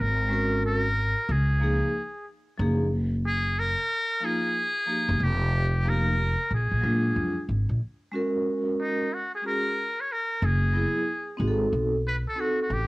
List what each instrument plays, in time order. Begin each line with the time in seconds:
0.00 upright bass G#1, muted trumpet A#4
0.29 vibraphone G#3 C#4 F#4 A#4
0.66 muted trumpet A#4
1.29 upright bass C#2, muted trumpet G#4
1.60 vibraphone F3 A#3 D#4 G#4
2.58 upright bass F#1, vibraphone F3 A#3 D#4 G#4
3.27 muted trumpet G#4
3.60 muted trumpet A#4
4.20 vibraphone F3 A#3 D#4 F4
4.25 muted trumpet G#4
4.86 vibraphone F3 A#3 D#4 G4
5.08 upright bass F#1
5.20 upright bass F1, muted trumpet G4
5.84 vibraphone F3 A#3 D#4 G4
5.89 muted trumpet A#4
6.51 upright bass A#1, muted trumpet G#4
6.71 upright bass A#1
6.81 upright bass A#2, vibraphone F#3 G#3 D4 F4
7.16 upright bass F2
7.49 upright bass G#1
7.69 upright bass A#1
8.12 vibraphone G#3 C#4 F#4 A#4
8.81 muted trumpet D#4
9.13 muted trumpet F#4
9.35 muted trumpet G#4
9.42 vibraphone G#3 C#4 F#4 G#4
9.46 muted trumpet A#4
10.00 muted trumpet C#5
10.12 muted trumpet A#4
10.42 upright bass F#1, muted trumpet G#4
10.72 vibraphone F#3 B3 E4 G#4
11.37 upright bass G#1, vibraphone C4 D#4 F#4
11.41 vibraphone G#4
11.48 vibraphone A4
11.73 upright bass B1
12.07 muted trumpet B4
12.28 muted trumpet A4
12.35 vibraphone C4 D#4 F#4 A4
12.40 muted trumpet F#4
12.62 muted trumpet F#4
12.70 upright bass A1, muted trumpet G4